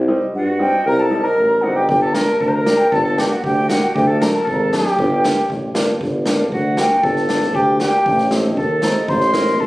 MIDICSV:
0, 0, Header, 1, 6, 480
1, 0, Start_track
1, 0, Key_signature, -2, "minor"
1, 0, Tempo, 515021
1, 794, Time_signature, 2, 2, 24, 8
1, 9010, End_track
2, 0, Start_track
2, 0, Title_t, "Flute"
2, 0, Program_c, 0, 73
2, 328, Note_on_c, 0, 78, 85
2, 545, Note_off_c, 0, 78, 0
2, 564, Note_on_c, 0, 79, 88
2, 783, Note_off_c, 0, 79, 0
2, 817, Note_on_c, 0, 82, 109
2, 926, Note_on_c, 0, 81, 92
2, 940, Note_off_c, 0, 82, 0
2, 1153, Note_on_c, 0, 82, 77
2, 1166, Note_off_c, 0, 81, 0
2, 1506, Note_on_c, 0, 78, 78
2, 1520, Note_off_c, 0, 82, 0
2, 1634, Note_on_c, 0, 79, 82
2, 1648, Note_off_c, 0, 78, 0
2, 1748, Note_off_c, 0, 79, 0
2, 1754, Note_on_c, 0, 79, 91
2, 1876, Note_on_c, 0, 81, 82
2, 1890, Note_off_c, 0, 79, 0
2, 1978, Note_on_c, 0, 82, 88
2, 1992, Note_off_c, 0, 81, 0
2, 2104, Note_off_c, 0, 82, 0
2, 2110, Note_on_c, 0, 81, 72
2, 2232, Note_on_c, 0, 82, 84
2, 2246, Note_off_c, 0, 81, 0
2, 2586, Note_on_c, 0, 79, 89
2, 2600, Note_off_c, 0, 82, 0
2, 2703, Note_off_c, 0, 79, 0
2, 2709, Note_on_c, 0, 81, 103
2, 2826, Note_off_c, 0, 81, 0
2, 2846, Note_on_c, 0, 81, 83
2, 2966, Note_on_c, 0, 79, 82
2, 2980, Note_off_c, 0, 81, 0
2, 3076, Note_off_c, 0, 79, 0
2, 3081, Note_on_c, 0, 78, 73
2, 3193, Note_off_c, 0, 78, 0
2, 3223, Note_on_c, 0, 79, 91
2, 3436, Note_off_c, 0, 79, 0
2, 3448, Note_on_c, 0, 78, 69
2, 3573, Note_on_c, 0, 79, 80
2, 3587, Note_off_c, 0, 78, 0
2, 3681, Note_off_c, 0, 79, 0
2, 3686, Note_on_c, 0, 79, 83
2, 3795, Note_off_c, 0, 79, 0
2, 3805, Note_on_c, 0, 81, 80
2, 3934, Note_on_c, 0, 82, 98
2, 3948, Note_off_c, 0, 81, 0
2, 4043, Note_off_c, 0, 82, 0
2, 4048, Note_on_c, 0, 81, 79
2, 4156, Note_off_c, 0, 81, 0
2, 4169, Note_on_c, 0, 81, 77
2, 4219, Note_on_c, 0, 82, 72
2, 4233, Note_off_c, 0, 81, 0
2, 4287, Note_on_c, 0, 81, 88
2, 4301, Note_off_c, 0, 82, 0
2, 4416, Note_on_c, 0, 79, 77
2, 4430, Note_off_c, 0, 81, 0
2, 5127, Note_off_c, 0, 79, 0
2, 6093, Note_on_c, 0, 78, 77
2, 6340, Note_on_c, 0, 79, 84
2, 6354, Note_off_c, 0, 78, 0
2, 6563, Note_on_c, 0, 81, 97
2, 6577, Note_off_c, 0, 79, 0
2, 7040, Note_on_c, 0, 79, 86
2, 7054, Note_off_c, 0, 81, 0
2, 7257, Note_off_c, 0, 79, 0
2, 7262, Note_on_c, 0, 79, 83
2, 7713, Note_off_c, 0, 79, 0
2, 7984, Note_on_c, 0, 81, 69
2, 8238, Note_on_c, 0, 82, 85
2, 8252, Note_off_c, 0, 81, 0
2, 8475, Note_on_c, 0, 84, 104
2, 8489, Note_off_c, 0, 82, 0
2, 8951, Note_on_c, 0, 81, 81
2, 8965, Note_off_c, 0, 84, 0
2, 9010, Note_off_c, 0, 81, 0
2, 9010, End_track
3, 0, Start_track
3, 0, Title_t, "Clarinet"
3, 0, Program_c, 1, 71
3, 318, Note_on_c, 1, 66, 70
3, 764, Note_off_c, 1, 66, 0
3, 804, Note_on_c, 1, 70, 90
3, 911, Note_off_c, 1, 70, 0
3, 930, Note_on_c, 1, 69, 72
3, 1147, Note_off_c, 1, 69, 0
3, 1151, Note_on_c, 1, 70, 89
3, 1526, Note_on_c, 1, 66, 81
3, 1540, Note_off_c, 1, 70, 0
3, 1634, Note_off_c, 1, 66, 0
3, 1639, Note_on_c, 1, 67, 69
3, 1751, Note_off_c, 1, 67, 0
3, 1770, Note_on_c, 1, 67, 74
3, 1876, Note_off_c, 1, 67, 0
3, 1882, Note_on_c, 1, 69, 86
3, 1992, Note_off_c, 1, 69, 0
3, 2000, Note_on_c, 1, 70, 96
3, 2223, Note_off_c, 1, 70, 0
3, 2242, Note_on_c, 1, 70, 79
3, 2312, Note_on_c, 1, 72, 61
3, 2326, Note_off_c, 1, 70, 0
3, 2380, Note_on_c, 1, 70, 92
3, 2394, Note_off_c, 1, 72, 0
3, 2724, Note_on_c, 1, 69, 81
3, 2738, Note_off_c, 1, 70, 0
3, 2830, Note_off_c, 1, 69, 0
3, 2836, Note_on_c, 1, 69, 84
3, 2969, Note_on_c, 1, 67, 83
3, 2982, Note_on_c, 1, 66, 66
3, 2983, Note_off_c, 1, 69, 0
3, 2996, Note_off_c, 1, 67, 0
3, 3006, Note_on_c, 1, 67, 75
3, 3020, Note_off_c, 1, 66, 0
3, 3082, Note_on_c, 1, 66, 65
3, 3096, Note_off_c, 1, 67, 0
3, 3192, Note_on_c, 1, 67, 79
3, 3206, Note_off_c, 1, 66, 0
3, 3432, Note_on_c, 1, 66, 68
3, 3446, Note_off_c, 1, 67, 0
3, 3678, Note_on_c, 1, 67, 71
3, 3692, Note_off_c, 1, 66, 0
3, 3793, Note_on_c, 1, 69, 79
3, 3807, Note_off_c, 1, 67, 0
3, 3902, Note_off_c, 1, 69, 0
3, 3907, Note_on_c, 1, 70, 79
3, 4149, Note_on_c, 1, 69, 74
3, 4163, Note_off_c, 1, 70, 0
3, 4404, Note_on_c, 1, 67, 87
3, 4418, Note_off_c, 1, 69, 0
3, 5122, Note_off_c, 1, 67, 0
3, 6073, Note_on_c, 1, 66, 71
3, 6521, Note_off_c, 1, 66, 0
3, 6549, Note_on_c, 1, 69, 78
3, 6998, Note_off_c, 1, 69, 0
3, 7034, Note_on_c, 1, 67, 82
3, 7258, Note_off_c, 1, 67, 0
3, 7275, Note_on_c, 1, 67, 77
3, 7720, Note_off_c, 1, 67, 0
3, 7991, Note_on_c, 1, 69, 71
3, 8436, Note_off_c, 1, 69, 0
3, 8465, Note_on_c, 1, 72, 74
3, 8694, Note_on_c, 1, 70, 80
3, 8708, Note_off_c, 1, 72, 0
3, 8940, Note_off_c, 1, 70, 0
3, 8944, Note_on_c, 1, 69, 66
3, 9010, Note_off_c, 1, 69, 0
3, 9010, End_track
4, 0, Start_track
4, 0, Title_t, "Upright piano"
4, 0, Program_c, 2, 0
4, 74, Note_on_c, 2, 55, 79
4, 75, Note_on_c, 2, 60, 73
4, 77, Note_on_c, 2, 63, 86
4, 193, Note_off_c, 2, 55, 0
4, 193, Note_off_c, 2, 60, 0
4, 194, Note_off_c, 2, 63, 0
4, 549, Note_on_c, 2, 60, 62
4, 552, Note_on_c, 2, 55, 76
4, 553, Note_on_c, 2, 63, 72
4, 672, Note_off_c, 2, 60, 0
4, 673, Note_off_c, 2, 55, 0
4, 674, Note_off_c, 2, 63, 0
4, 1027, Note_on_c, 2, 55, 75
4, 1029, Note_on_c, 2, 60, 69
4, 1031, Note_on_c, 2, 63, 84
4, 1152, Note_off_c, 2, 55, 0
4, 1153, Note_off_c, 2, 60, 0
4, 1153, Note_off_c, 2, 63, 0
4, 1518, Note_on_c, 2, 55, 62
4, 1518, Note_on_c, 2, 60, 71
4, 1523, Note_on_c, 2, 63, 79
4, 1638, Note_off_c, 2, 55, 0
4, 1638, Note_off_c, 2, 60, 0
4, 1640, Note_off_c, 2, 63, 0
4, 1992, Note_on_c, 2, 55, 60
4, 1993, Note_on_c, 2, 58, 60
4, 1997, Note_on_c, 2, 62, 76
4, 2115, Note_off_c, 2, 55, 0
4, 2116, Note_off_c, 2, 58, 0
4, 2118, Note_off_c, 2, 62, 0
4, 2481, Note_on_c, 2, 55, 72
4, 2483, Note_on_c, 2, 62, 82
4, 2486, Note_on_c, 2, 58, 69
4, 2601, Note_off_c, 2, 55, 0
4, 2602, Note_off_c, 2, 62, 0
4, 2603, Note_off_c, 2, 58, 0
4, 2957, Note_on_c, 2, 55, 65
4, 2961, Note_on_c, 2, 58, 58
4, 2964, Note_on_c, 2, 62, 72
4, 3079, Note_off_c, 2, 55, 0
4, 3081, Note_off_c, 2, 58, 0
4, 3082, Note_off_c, 2, 62, 0
4, 3441, Note_on_c, 2, 55, 76
4, 3448, Note_on_c, 2, 58, 68
4, 3450, Note_on_c, 2, 62, 73
4, 3561, Note_off_c, 2, 55, 0
4, 3565, Note_off_c, 2, 58, 0
4, 3566, Note_off_c, 2, 62, 0
4, 3925, Note_on_c, 2, 57, 62
4, 3926, Note_on_c, 2, 54, 73
4, 3930, Note_on_c, 2, 62, 75
4, 4043, Note_off_c, 2, 57, 0
4, 4044, Note_off_c, 2, 54, 0
4, 4045, Note_off_c, 2, 62, 0
4, 4402, Note_on_c, 2, 54, 76
4, 4407, Note_on_c, 2, 62, 76
4, 4409, Note_on_c, 2, 57, 67
4, 4521, Note_off_c, 2, 54, 0
4, 4524, Note_off_c, 2, 62, 0
4, 4525, Note_off_c, 2, 57, 0
4, 4887, Note_on_c, 2, 55, 70
4, 4888, Note_on_c, 2, 58, 65
4, 4891, Note_on_c, 2, 62, 72
4, 5003, Note_off_c, 2, 55, 0
4, 5004, Note_off_c, 2, 58, 0
4, 5006, Note_off_c, 2, 62, 0
4, 5354, Note_on_c, 2, 55, 78
4, 5356, Note_on_c, 2, 58, 78
4, 5359, Note_on_c, 2, 62, 85
4, 5477, Note_off_c, 2, 55, 0
4, 5478, Note_off_c, 2, 58, 0
4, 5479, Note_off_c, 2, 62, 0
4, 5835, Note_on_c, 2, 55, 70
4, 5839, Note_on_c, 2, 58, 75
4, 5843, Note_on_c, 2, 62, 78
4, 5957, Note_off_c, 2, 55, 0
4, 5959, Note_off_c, 2, 58, 0
4, 5961, Note_off_c, 2, 62, 0
4, 6311, Note_on_c, 2, 55, 67
4, 6313, Note_on_c, 2, 58, 59
4, 6317, Note_on_c, 2, 62, 76
4, 6434, Note_off_c, 2, 55, 0
4, 6435, Note_off_c, 2, 58, 0
4, 6437, Note_off_c, 2, 62, 0
4, 6799, Note_on_c, 2, 55, 62
4, 6799, Note_on_c, 2, 58, 57
4, 6800, Note_on_c, 2, 62, 70
4, 6917, Note_off_c, 2, 55, 0
4, 6917, Note_off_c, 2, 58, 0
4, 6918, Note_off_c, 2, 62, 0
4, 7277, Note_on_c, 2, 55, 75
4, 7279, Note_on_c, 2, 62, 76
4, 7281, Note_on_c, 2, 58, 65
4, 7395, Note_off_c, 2, 55, 0
4, 7397, Note_off_c, 2, 58, 0
4, 7397, Note_off_c, 2, 62, 0
4, 7755, Note_on_c, 2, 57, 68
4, 7756, Note_on_c, 2, 60, 61
4, 7761, Note_on_c, 2, 63, 72
4, 7874, Note_off_c, 2, 57, 0
4, 7874, Note_off_c, 2, 60, 0
4, 7877, Note_off_c, 2, 63, 0
4, 8228, Note_on_c, 2, 60, 68
4, 8229, Note_on_c, 2, 57, 68
4, 8235, Note_on_c, 2, 63, 74
4, 8349, Note_off_c, 2, 60, 0
4, 8350, Note_off_c, 2, 57, 0
4, 8352, Note_off_c, 2, 63, 0
4, 8704, Note_on_c, 2, 57, 63
4, 8706, Note_on_c, 2, 60, 66
4, 8707, Note_on_c, 2, 63, 68
4, 8826, Note_off_c, 2, 57, 0
4, 8827, Note_off_c, 2, 60, 0
4, 8827, Note_off_c, 2, 63, 0
4, 9010, End_track
5, 0, Start_track
5, 0, Title_t, "Tuba"
5, 0, Program_c, 3, 58
5, 0, Note_on_c, 3, 36, 122
5, 124, Note_off_c, 3, 36, 0
5, 318, Note_on_c, 3, 43, 99
5, 605, Note_off_c, 3, 43, 0
5, 798, Note_on_c, 3, 36, 122
5, 1086, Note_off_c, 3, 36, 0
5, 1280, Note_on_c, 3, 33, 75
5, 1495, Note_off_c, 3, 33, 0
5, 1520, Note_on_c, 3, 31, 81
5, 1735, Note_off_c, 3, 31, 0
5, 1759, Note_on_c, 3, 31, 108
5, 2048, Note_off_c, 3, 31, 0
5, 2239, Note_on_c, 3, 38, 89
5, 2527, Note_off_c, 3, 38, 0
5, 2725, Note_on_c, 3, 31, 125
5, 3012, Note_off_c, 3, 31, 0
5, 3200, Note_on_c, 3, 38, 94
5, 3489, Note_off_c, 3, 38, 0
5, 3688, Note_on_c, 3, 38, 120
5, 3974, Note_off_c, 3, 38, 0
5, 4168, Note_on_c, 3, 32, 102
5, 4454, Note_off_c, 3, 32, 0
5, 4647, Note_on_c, 3, 31, 126
5, 4933, Note_off_c, 3, 31, 0
5, 5124, Note_on_c, 3, 33, 76
5, 5338, Note_off_c, 3, 33, 0
5, 5362, Note_on_c, 3, 31, 75
5, 5577, Note_off_c, 3, 31, 0
5, 5597, Note_on_c, 3, 31, 88
5, 6075, Note_on_c, 3, 38, 89
5, 6089, Note_off_c, 3, 31, 0
5, 6363, Note_off_c, 3, 38, 0
5, 6556, Note_on_c, 3, 31, 103
5, 7032, Note_on_c, 3, 38, 100
5, 7046, Note_off_c, 3, 31, 0
5, 7320, Note_off_c, 3, 38, 0
5, 7514, Note_on_c, 3, 33, 109
5, 7992, Note_on_c, 3, 39, 97
5, 8006, Note_off_c, 3, 33, 0
5, 8278, Note_off_c, 3, 39, 0
5, 8470, Note_on_c, 3, 33, 106
5, 8947, Note_on_c, 3, 39, 103
5, 8961, Note_off_c, 3, 33, 0
5, 9010, Note_off_c, 3, 39, 0
5, 9010, End_track
6, 0, Start_track
6, 0, Title_t, "Drums"
6, 1760, Note_on_c, 9, 36, 91
6, 1853, Note_off_c, 9, 36, 0
6, 2000, Note_on_c, 9, 38, 93
6, 2093, Note_off_c, 9, 38, 0
6, 2241, Note_on_c, 9, 36, 64
6, 2334, Note_off_c, 9, 36, 0
6, 2484, Note_on_c, 9, 38, 81
6, 2577, Note_off_c, 9, 38, 0
6, 2723, Note_on_c, 9, 36, 90
6, 2816, Note_off_c, 9, 36, 0
6, 2967, Note_on_c, 9, 38, 90
6, 3060, Note_off_c, 9, 38, 0
6, 3204, Note_on_c, 9, 36, 79
6, 3297, Note_off_c, 9, 36, 0
6, 3444, Note_on_c, 9, 38, 89
6, 3537, Note_off_c, 9, 38, 0
6, 3688, Note_on_c, 9, 36, 95
6, 3781, Note_off_c, 9, 36, 0
6, 3930, Note_on_c, 9, 38, 96
6, 4023, Note_off_c, 9, 38, 0
6, 4169, Note_on_c, 9, 36, 71
6, 4262, Note_off_c, 9, 36, 0
6, 4406, Note_on_c, 9, 38, 69
6, 4499, Note_off_c, 9, 38, 0
6, 4537, Note_on_c, 9, 38, 28
6, 4631, Note_off_c, 9, 38, 0
6, 4648, Note_on_c, 9, 36, 93
6, 4741, Note_off_c, 9, 36, 0
6, 4888, Note_on_c, 9, 38, 87
6, 4981, Note_off_c, 9, 38, 0
6, 5125, Note_on_c, 9, 36, 70
6, 5218, Note_off_c, 9, 36, 0
6, 5359, Note_on_c, 9, 38, 91
6, 5452, Note_off_c, 9, 38, 0
6, 5600, Note_on_c, 9, 36, 83
6, 5693, Note_off_c, 9, 36, 0
6, 5830, Note_on_c, 9, 38, 86
6, 5923, Note_off_c, 9, 38, 0
6, 6077, Note_on_c, 9, 36, 61
6, 6170, Note_off_c, 9, 36, 0
6, 6312, Note_on_c, 9, 38, 76
6, 6405, Note_off_c, 9, 38, 0
6, 6557, Note_on_c, 9, 36, 93
6, 6650, Note_off_c, 9, 36, 0
6, 6675, Note_on_c, 9, 38, 25
6, 6768, Note_off_c, 9, 38, 0
6, 6792, Note_on_c, 9, 38, 84
6, 6885, Note_off_c, 9, 38, 0
6, 6913, Note_on_c, 9, 38, 29
6, 7007, Note_off_c, 9, 38, 0
6, 7035, Note_on_c, 9, 36, 72
6, 7128, Note_off_c, 9, 36, 0
6, 7268, Note_on_c, 9, 38, 79
6, 7362, Note_off_c, 9, 38, 0
6, 7512, Note_on_c, 9, 36, 95
6, 7605, Note_off_c, 9, 36, 0
6, 7626, Note_on_c, 9, 38, 24
6, 7719, Note_off_c, 9, 38, 0
6, 7744, Note_on_c, 9, 38, 89
6, 7838, Note_off_c, 9, 38, 0
6, 7988, Note_on_c, 9, 36, 70
6, 8081, Note_off_c, 9, 36, 0
6, 8221, Note_on_c, 9, 38, 76
6, 8314, Note_off_c, 9, 38, 0
6, 8467, Note_on_c, 9, 36, 97
6, 8560, Note_off_c, 9, 36, 0
6, 8578, Note_on_c, 9, 38, 24
6, 8672, Note_off_c, 9, 38, 0
6, 8701, Note_on_c, 9, 38, 88
6, 8794, Note_off_c, 9, 38, 0
6, 8825, Note_on_c, 9, 38, 27
6, 8918, Note_off_c, 9, 38, 0
6, 8947, Note_on_c, 9, 36, 64
6, 9010, Note_off_c, 9, 36, 0
6, 9010, End_track
0, 0, End_of_file